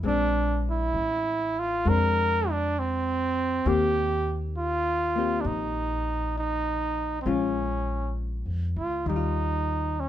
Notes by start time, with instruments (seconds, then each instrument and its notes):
0.03 upright bass A#1, hollow-body jazz guitar G#3 C4, trumpet D4
0.08 hollow-body jazz guitar D4
0.71 trumpet E4
0.94 upright bass A1
1.59 trumpet F4
1.85 upright bass F2, hollow-body jazz guitar G#3 C4 D4, trumpet A#4
2.50 trumpet D4
2.79 trumpet C4
3.65 upright bass D#2, hollow-body jazz guitar D#3 A#3 C4 G4, trumpet G4
4.58 trumpet F4
5.16 hollow-body jazz guitar A#3 C4 G4
5.41 upright bass A#1, trumpet D4
5.46 trumpet D#4
6.38 trumpet D#4
7.22 upright bass A#1, trumpet C4
7.26 hollow-body jazz guitar G#3 C#4 F4, trumpet C#4
8.46 upright bass F2
8.76 upright bass C#2, trumpet F4
9.06 upright bass D#2, hollow-body jazz guitar D#3 G3, trumpet D#4
9.16 hollow-body jazz guitar F4
10.00 trumpet C#4